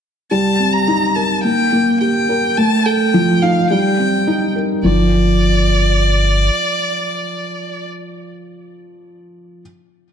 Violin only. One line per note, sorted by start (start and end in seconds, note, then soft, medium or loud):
0.31 0.75 A5 loud
0.73 1.17 A#5 loud
1.15 1.43 A5 medium
1.44 1.97 G5 loud
2.01 2.59 G5 medium
2.57 2.87 A5 loud
2.86 3.44 G5 loud
3.42 3.70 F5 medium
3.71 4.52 G5 medium
4.84 7.87 D5 loud